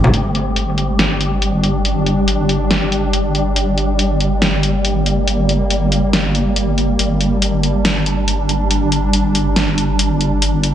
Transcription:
0.00 0.12 A#1 medium
0.00 0.12 G3 medium
0.00 0.16 A3 medium
0.00 0.14 C4 medium
0.00 0.12 G4 medium
0.00 mid tom medium
0.04 high conga medium
0.13 6.97 G1 medium
0.13 10.74 G3 medium
0.13 3.59 D4 medium
0.13 7.02 G4 medium
0.13 closed hi-hat medium
0.35 closed hi-hat medium
0.56 closed hi-hat medium
0.78 closed hi-hat medium
0.99 snare loud
0.99 closed hi-hat medium
1.21 closed hi-hat medium
1.42 closed hi-hat medium
1.64 closed hi-hat soft
1.85 closed hi-hat medium
2.06 closed hi-hat soft
2.28 closed hi-hat medium
2.49 closed hi-hat medium
2.71 snare loud
2.71 closed hi-hat medium
2.92 closed hi-hat medium
3.13 closed hi-hat medium
3.35 closed hi-hat soft
3.56 7.02 A#3 medium
3.56 closed hi-hat medium
3.78 closed hi-hat soft
3.99 closed hi-hat medium
4.20 closed hi-hat soft
4.42 snare loud
4.42 closed hi-hat medium
4.63 closed hi-hat medium
4.85 closed hi-hat medium
5.06 closed hi-hat soft
5.28 closed hi-hat medium
5.49 closed hi-hat soft
5.70 closed hi-hat medium
5.92 closed hi-hat soft
6.13 snare loud
6.13 closed hi-hat medium
6.35 closed hi-hat medium
6.56 closed hi-hat medium
6.78 closed hi-hat soft
6.99 10.74 G1 medium
6.99 10.74 D4 medium
6.99 10.45 D4 medium
6.99 closed hi-hat medium
7.21 closed hi-hat soft
7.42 closed hi-hat medium
7.63 closed hi-hat soft
7.85 snare loud
7.85 closed hi-hat medium
8.06 closed hi-hat medium
8.28 closed hi-hat medium
8.49 closed hi-hat soft
8.71 closed hi-hat medium
8.92 closed hi-hat soft
9.13 closed hi-hat medium
9.35 closed hi-hat soft
9.56 snare loud
9.56 closed hi-hat medium
9.78 closed hi-hat medium
9.99 closed hi-hat medium
10.21 closed hi-hat soft
10.42 10.74 A#3 medium
10.42 closed hi-hat medium
10.63 closed hi-hat medium

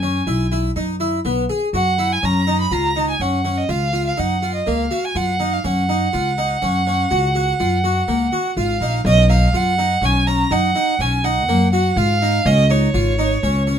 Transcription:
0.00 0.19 F#2 medium
0.00 0.20 C#4 medium
0.00 0.50 G#5 medium
0.27 0.68 B1 medium
0.27 0.45 E4 medium
0.52 0.69 E4 medium
0.76 1.17 F#2 medium
0.76 0.94 D#4 medium
1.00 1.18 E4 medium
1.25 1.46 B1 medium
1.25 1.43 B3 medium
1.49 1.67 G#4 medium
1.73 2.15 F#2 medium
1.73 1.91 F#4 medium
1.73 2.14 F#5 medium
1.98 2.16 E4 medium
2.13 2.27 G#5 medium
2.23 2.64 F#2 medium
2.23 2.41 C#4 medium
2.23 2.60 A#5 loud
2.47 2.65 D#4 medium
2.61 2.74 B5 medium
2.71 3.12 C#2 medium
2.71 2.89 F4 medium
2.71 3.09 A#5 loud
2.96 3.14 D#4 medium
3.10 3.23 G#5 medium
3.19 3.61 F#2 medium
3.19 3.38 C#4 medium
3.19 3.59 F#5 medium
3.45 3.62 C#4 medium
3.58 3.72 D#5 medium
3.69 4.10 C#2 loud
3.69 3.87 F4 medium
3.69 4.06 F5 medium
3.93 4.11 F4 medium
4.07 4.21 F5 medium
4.17 4.60 F#2 medium
4.17 4.35 D#4 medium
4.17 4.54 F#5 medium
4.42 4.60 F4 medium
4.55 4.70 D#5 medium
4.67 4.88 C#2 medium
4.67 4.84 A#3 medium
4.67 5.07 F5 medium
4.91 5.08 F#4 medium
5.05 5.18 G#5 medium
5.15 5.56 F#2 medium
5.15 5.33 F4 medium
5.15 5.55 F#5 medium
5.40 5.57 D#4 medium
5.53 5.67 F5 medium
5.64 6.05 F#2 medium
5.64 5.82 C#4 medium
5.64 8.57 F#5 medium
5.89 6.06 D#4 medium
6.13 6.54 C#2 medium
6.13 6.31 F4 medium
6.38 6.55 D#4 medium
6.62 7.03 F#2 medium
6.62 6.79 C#4 medium
6.87 7.04 C#4 medium
7.11 7.52 C#2 loud
7.11 7.28 F#4 medium
7.35 7.52 F#4 medium
7.60 8.00 F#2 medium
7.60 7.77 F4 medium
7.84 8.01 F#4 medium
8.08 8.28 C#2 medium
8.08 8.25 A#3 medium
8.32 8.50 F#4 medium
8.57 8.79 G#1 medium
8.57 8.74 F4 medium
8.57 9.04 F5 medium
8.81 9.03 A#1 medium
8.81 8.99 D#4 medium
9.05 9.46 B1 loud
9.05 9.23 C#4 loud
9.05 9.29 D#5 loud
9.30 9.47 D#4 medium
9.30 9.58 F5 medium
9.53 9.94 F#2 medium
9.53 9.71 F4 medium
9.53 10.07 F#5 loud
9.78 9.96 D#4 medium
10.01 10.43 B1 medium
10.01 10.20 C#4 medium
10.01 10.29 G#5 medium
10.27 10.44 C#4 medium
10.27 10.54 A#5 medium
10.51 10.71 F#2 medium
10.51 10.68 D#4 medium
10.51 11.03 F#5 loud
10.75 10.93 D#4 medium
10.99 11.49 B1 medium
10.99 11.17 C#4 medium
10.99 11.26 G#5 medium
11.24 11.41 D#4 medium
11.24 11.72 F#5 medium
11.49 11.89 F#2 medium
11.49 11.66 A#3 loud
11.73 11.90 F#4 medium
11.73 12.00 F#5 medium
11.96 12.37 G#2 loud
11.96 12.15 F4 medium
11.96 12.48 F5 loud
12.22 12.39 D#4 medium
12.45 12.86 C#2 loud
12.45 12.63 C#4 loud
12.45 12.73 D#5 loud
12.70 12.87 D#4 medium
12.70 13.79 C#5 medium
12.94 13.35 G#1 medium
12.94 13.12 F4 medium
13.19 13.36 D#4 medium
13.43 13.79 C#2 medium
13.43 13.61 C#4 medium
13.67 13.79 C#4 medium

